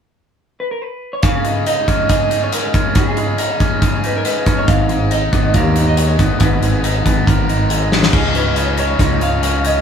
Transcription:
0.60 0.70 B4 medium
0.71 0.82 A#4 medium
0.82 1.14 B4 medium
1.13 1.22 C#5 medium
1.23 2.31 C#3 medium
1.23 1.63 F5 medium
1.23 kick medium
1.23 closed hi-hat medium
1.45 2.52 G#3 medium
1.45 closed hi-hat soft
1.66 2.30 D#4 medium
1.66 2.08 D#5 medium
1.66 closed hi-hat medium
1.88 2.74 C#4 medium
1.88 kick medium
1.88 closed hi-hat soft
2.09 3.82 G#4 medium
2.09 2.43 D#5 medium
2.09 kick medium
2.09 closed hi-hat medium
2.30 3.38 D#4 medium
2.30 closed hi-hat medium
2.44 2.54 C#5 medium
2.52 3.17 G#3 medium
2.52 2.98 A#4 medium
2.52 closed hi-hat medium
2.74 3.59 C#4 medium
2.74 kick medium
2.74 closed hi-hat medium
2.95 4.03 C#3 medium
2.95 4.01 G#4 medium
2.95 kick medium
2.95 closed hi-hat medium
3.17 4.24 G#3 medium
3.17 closed hi-hat soft
3.38 4.04 D#4 medium
3.38 closed hi-hat medium
3.60 4.45 C#4 medium
3.60 kick medium
3.60 closed hi-hat soft
3.82 5.54 G#4 medium
3.82 kick medium
3.82 closed hi-hat medium
4.04 5.11 D#4 soft
4.04 4.16 B4 medium
4.04 closed hi-hat soft
4.16 4.25 A#4 medium
4.25 4.89 G#3 medium
4.25 4.55 B4 medium
4.25 closed hi-hat medium
4.46 4.68 C#4 medium
4.46 kick medium
4.46 closed hi-hat medium
4.58 4.69 C#5 medium
4.68 5.29 G#1 medium
4.68 5.76 G#2 medium
4.68 5.09 F5 medium
4.68 kick medium
4.68 closed hi-hat medium
4.89 5.97 G#3 medium
4.89 closed hi-hat soft
5.11 5.76 D#4 medium
5.11 5.55 D#5 medium
5.11 closed hi-hat medium
5.32 5.56 G#1 medium
5.32 6.18 B3 medium
5.32 kick medium
5.32 closed hi-hat soft
5.54 6.15 D#2 medium
5.54 6.62 A#4 medium
5.54 5.85 F5 medium
5.54 kick medium
5.54 closed hi-hat medium
5.76 6.83 D#4 medium
5.76 closed hi-hat medium
5.89 6.00 D#5 medium
5.97 6.61 G#3 medium
5.97 6.42 C#5 medium
5.97 closed hi-hat medium
6.19 6.29 G#1 medium
6.19 7.04 B3 medium
6.19 kick medium
6.19 closed hi-hat medium
6.40 6.60 G#1 medium
6.40 7.48 G#2 medium
6.40 7.67 B4 medium
6.40 kick medium
6.40 closed hi-hat medium
6.62 7.02 G#1 medium
6.62 7.69 G#3 medium
6.62 closed hi-hat soft
6.84 7.47 D#4 medium
6.84 closed hi-hat medium
7.05 7.25 G#1 medium
7.05 7.90 B3 medium
7.05 kick medium
7.05 closed hi-hat medium
7.27 8.09 G#1 medium
7.27 8.13 A#4 medium
7.27 kick medium
7.27 closed hi-hat medium
7.48 8.13 D#4 medium
7.48 closed hi-hat soft
7.70 8.12 G#3 medium
7.70 closed hi-hat medium
7.91 8.13 B3 medium
7.91 snare soft
8.03 snare medium
8.12 8.95 C#2 medium
8.12 8.55 C#3 medium
8.12 8.36 G#3 medium
8.12 8.35 C#4 medium
8.12 8.34 D#4 medium
8.12 8.35 G#4 medium
8.12 kick medium
8.12 crash medium
8.34 8.56 G#3 soft
8.34 8.57 C#4 medium
8.34 8.57 D#4 medium
8.34 8.80 B4 medium
8.34 closed hi-hat soft
8.55 8.79 C#3 medium
8.55 8.79 G#3 medium
8.55 8.78 C#4 medium
8.55 8.77 D#4 medium
8.55 closed hi-hat medium
8.77 8.98 C#3 medium
8.77 9.00 G#3 medium
8.77 9.00 C#4 medium
8.77 9.01 D#4 medium
8.77 9.23 C#5 medium
8.77 closed hi-hat medium
8.99 9.81 C#2 medium
8.99 9.21 C#3 medium
8.99 9.21 G#3 medium
8.99 9.20 C#4 medium
8.99 9.20 D#4 medium
8.99 kick medium
8.99 closed hi-hat medium
9.20 9.40 C#3 medium
9.20 9.42 G#3 medium
9.20 9.42 C#4 medium
9.20 9.43 D#4 medium
9.20 9.66 F5 medium
9.20 closed hi-hat medium
9.41 9.81 C#3 medium
9.41 9.66 G#3 medium
9.41 9.64 C#4 medium
9.41 9.63 D#4 medium
9.41 closed hi-hat medium
9.64 9.81 G#3 soft
9.64 9.81 C#4 medium
9.64 9.81 D#4 medium
9.64 9.81 D#5 medium
9.64 closed hi-hat medium

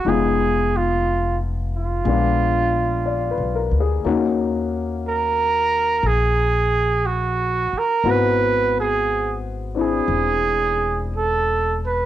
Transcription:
0.00 0.10 F#4 medium
0.05 2.01 F1 medium
0.05 2.03 G#3 soft
0.05 2.05 B3 soft
0.05 2.05 D#4 soft
0.05 2.05 F4 soft
0.05 0.78 G#4 medium
0.76 1.38 F4 medium
1.76 3.70 F4 medium
2.05 3.33 A#1 medium
2.05 4.03 G#3 soft
2.05 4.04 B3 soft
2.05 4.05 D4 soft
2.10 4.06 F4 soft
3.06 3.52 D5 soft
3.31 3.73 B4 soft
3.38 3.68 B1 soft
3.55 3.85 A#4 soft
3.71 4.02 D2 medium
3.80 4.14 G#4 soft
4.05 5.99 D#2 medium
4.05 8.05 A#3 soft
4.05 8.05 C#4 soft
4.05 8.05 D#4 soft
4.05 8.04 F#4 soft
5.08 6.08 A#4 medium
6.03 7.68 A#1 medium
6.03 7.08 G#4 medium
7.06 7.80 F#4 medium
7.73 muted upright bass stroke soft
7.78 8.12 A#4 medium
8.04 10.02 G#1 medium
8.04 12.06 B3 soft
8.04 9.73 C4 soft
8.04 9.77 E4 soft
8.04 12.06 F#4 soft
8.10 8.77 B4 medium
8.80 9.37 G#4 medium
9.75 12.06 C4 soft
9.75 12.06 D4 soft
9.75 12.06 E4 soft
9.81 11.08 G#4 medium
10.08 12.06 E1 medium
11.16 11.79 A4 medium
11.87 12.06 B4 medium

